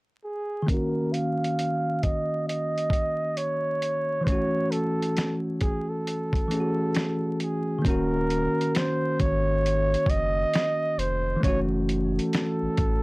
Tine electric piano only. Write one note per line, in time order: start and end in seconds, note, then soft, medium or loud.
0.62 4.19 D#3 medium
0.67 4.21 A#3 medium
0.67 4.23 C#4 soft
0.74 4.25 F#4 medium
4.21 6.43 E3 medium
4.21 6.45 A3 soft
4.29 6.47 C#4 medium
4.29 6.49 F#4 medium
6.48 7.83 E3 soft
6.48 7.84 A3 soft
6.48 7.85 C#4 soft
6.54 6.60 G#4 soft
6.60 7.88 F#4 soft
7.79 11.36 D#3 medium
7.79 11.37 A#3 medium
7.86 11.39 C#4 medium
7.86 11.41 F#4 medium
11.36 13.03 E3 medium
11.40 13.03 A3 medium
11.40 13.03 C#4 medium
11.48 13.03 F#4 medium